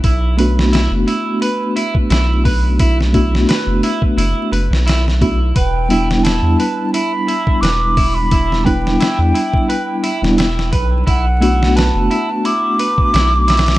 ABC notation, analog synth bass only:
X:1
M:4/4
L:1/16
Q:"Swing 16ths" 1/4=87
K:Em
V:1 name="Analog synth bass" clef=bass
B,,,4- B,,, F,,, z6 B,,,4- | B,,,4 z F,,, z2 F,,, z F,,, B,,,4- B,,, | E,,,4- E,,, E,, z6 E,,,4- | E,,,4 z E,, z4 z E,,,3 B,,,2 |
B,,,4- B,,, F,,, z6 B,,,4 |]